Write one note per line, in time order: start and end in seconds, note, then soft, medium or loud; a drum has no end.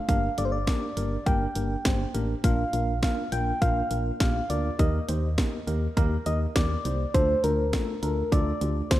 0.08 0.29 G1 loud
0.08 0.28 A#3 medium
0.08 0.28 D4 medium
0.08 0.28 G4 medium
0.08 0.28 A#4 loud
0.08 0.40 F5 loud
0.08 kick loud
0.08 closed hi-hat medium
0.38 0.69 G1 loud
0.38 0.57 A#3 medium
0.38 0.57 D4 medium
0.38 0.57 G4 medium
0.38 0.57 A4 medium
0.38 0.47 D5 medium
0.38 closed hi-hat medium
0.45 0.53 C5 medium
0.52 0.67 D5 medium
0.67 0.87 A#3 medium
0.67 0.87 D4 medium
0.67 0.87 G4 medium
0.67 0.87 A#4 medium
0.67 1.28 D5 medium
0.67 kick loud
0.67 snare loud
0.67 closed hi-hat medium
0.97 1.17 G1 loud
0.97 1.16 A#3 medium
0.97 1.16 D4 medium
0.97 1.16 G4 medium
0.97 1.16 A#4 medium
0.97 closed hi-hat medium
1.26 1.47 G1 loud
1.26 1.45 A#3 medium
1.26 1.45 D4 medium
1.26 1.45 G4 medium
1.26 1.45 A#4 loud
1.26 2.14 G5 medium
1.26 kick loud
1.26 closed hi-hat medium
1.55 1.76 G1 medium
1.55 1.75 A#3 medium
1.55 1.75 D4 medium
1.55 1.75 G4 medium
1.55 1.75 A#4 medium
1.55 closed hi-hat medium
1.85 2.06 G1 loud
1.85 2.04 A#3 medium
1.85 2.04 D4 medium
1.85 2.04 G4 medium
1.85 2.04 C5 medium
1.85 kick loud
1.85 snare loud
1.85 closed hi-hat medium
2.14 2.35 A1 medium
2.14 2.34 A#3 medium
2.14 2.34 D4 medium
2.14 2.34 G4 medium
2.14 2.34 A#4 medium
2.14 closed hi-hat medium
2.44 2.65 A#1 loud
2.44 2.63 A#3 medium
2.44 2.63 D4 medium
2.44 2.63 F4 medium
2.44 2.63 A#4 loud
2.44 2.99 F5 loud
2.44 kick loud
2.44 closed hi-hat medium
2.73 3.04 A#1 medium
2.73 2.92 A#3 medium
2.73 2.92 D4 medium
2.73 2.92 F4 medium
2.73 2.92 A#4 medium
2.73 closed hi-hat medium
3.03 3.22 A#3 medium
3.03 3.22 D4 medium
3.03 3.22 F4 medium
3.03 3.22 A#4 medium
3.03 3.34 F5 loud
3.03 kick loud
3.03 snare loud
3.03 closed hi-hat medium
3.32 3.53 A#1 loud
3.32 3.51 A#3 medium
3.32 3.51 D4 medium
3.32 3.51 F4 medium
3.32 3.51 A#4 medium
3.32 3.61 G5 loud
3.32 closed hi-hat medium
3.62 3.82 A#1 loud
3.62 3.81 A#3 medium
3.62 3.81 D4 medium
3.62 3.81 F4 medium
3.62 3.81 A#4 loud
3.62 4.16 F5 loud
3.62 kick loud
3.62 closed hi-hat medium
3.91 4.11 A#1 medium
3.91 4.10 A#3 medium
3.91 4.10 D4 medium
3.91 4.10 F4 medium
3.91 4.10 A#4 medium
3.91 closed hi-hat medium
4.20 4.41 A#1 medium
4.20 4.39 A#3 medium
4.20 4.39 D4 medium
4.20 4.40 F4 medium
4.20 4.40 G4 medium
4.20 4.52 F5 loud
4.20 kick loud
4.20 snare loud
4.20 closed hi-hat medium
4.50 4.70 D2 medium
4.50 4.69 A#3 medium
4.50 4.69 D4 medium
4.50 4.69 F4 medium
4.50 4.69 A#4 medium
4.50 4.81 D5 medium
4.50 closed hi-hat medium
4.79 5.00 D#2 loud
4.79 4.98 A#3 medium
4.79 4.98 D#4 medium
4.79 4.98 G4 medium
4.79 4.98 A#4 loud
4.79 5.97 D#5 medium
4.79 kick loud
4.79 closed hi-hat medium
5.08 5.40 D#2 loud
5.08 5.28 A#3 medium
5.08 5.28 D#4 medium
5.08 5.28 G4 medium
5.08 5.28 C5 medium
5.08 closed hi-hat medium
5.38 5.57 A#3 medium
5.38 5.57 D#4 medium
5.38 5.57 G4 medium
5.38 5.57 A#4 medium
5.38 kick loud
5.38 snare loud
5.38 closed hi-hat medium
5.67 5.88 D#2 loud
5.67 5.86 A#3 medium
5.67 5.86 D#4 medium
5.67 5.86 G4 medium
5.67 5.86 A#4 medium
5.67 closed hi-hat medium
5.97 6.18 D#2 loud
5.97 6.16 A#3 loud
5.97 6.16 D#4 loud
5.97 6.16 G4 loud
5.97 6.16 A#4 loud
5.97 kick loud
5.97 closed hi-hat medium
6.26 6.47 D#2 loud
6.26 6.45 A#3 medium
6.26 6.45 D#4 medium
6.26 6.45 G4 medium
6.26 6.45 A#4 medium
6.26 6.39 D#5 medium
6.26 closed hi-hat medium
6.56 6.76 D#2 loud
6.56 6.75 A#3 medium
6.56 6.75 D#4 medium
6.56 6.75 G4 medium
6.56 6.75 A#4 medium
6.56 7.16 D5 loud
6.56 kick loud
6.56 snare loud
6.56 closed hi-hat medium
6.85 7.06 C2 medium
6.85 7.04 A#3 medium
6.85 7.04 D#4 medium
6.85 7.04 G4 medium
6.85 7.04 C5 medium
6.85 closed hi-hat medium
7.14 7.35 D2 loud
7.14 7.34 A3 medium
7.14 7.34 D4 medium
7.14 7.34 F4 medium
7.14 7.34 A4 loud
7.14 7.45 C5 loud
7.14 kick loud
7.14 closed hi-hat medium
7.44 7.75 D2 loud
7.44 7.63 A3 medium
7.44 7.63 D4 medium
7.44 7.63 F4 medium
7.44 8.02 A#4 loud
7.44 7.63 C5 medium
7.44 closed hi-hat medium
7.73 7.92 A3 medium
7.73 7.92 D4 medium
7.73 7.92 F4 medium
7.73 7.92 A4 medium
7.73 kick loud
7.73 snare loud
7.73 closed hi-hat medium
8.03 8.23 D2 loud
8.03 8.22 A3 medium
8.03 8.22 D4 medium
8.03 8.22 F4 medium
8.03 8.22 A4 medium
8.03 8.34 A#4 loud
8.03 closed hi-hat medium
8.32 8.53 D2 loud
8.32 8.51 A3 medium
8.32 8.51 D4 medium
8.32 8.51 F4 medium
8.32 8.51 A4 loud
8.32 8.90 D5 loud
8.32 kick loud
8.32 closed hi-hat medium
8.61 8.82 D2 loud
8.61 8.81 A3 medium
8.61 8.81 D4 medium
8.61 8.80 F4 medium
8.61 8.81 G4 medium
8.61 closed hi-hat medium
8.91 9.00 D2 loud
8.91 9.00 A3 medium
8.91 9.00 D4 medium
8.91 9.00 F4 medium
8.91 9.00 A4 medium
8.91 9.00 C5 loud
8.91 kick loud
8.91 snare loud
8.91 closed hi-hat medium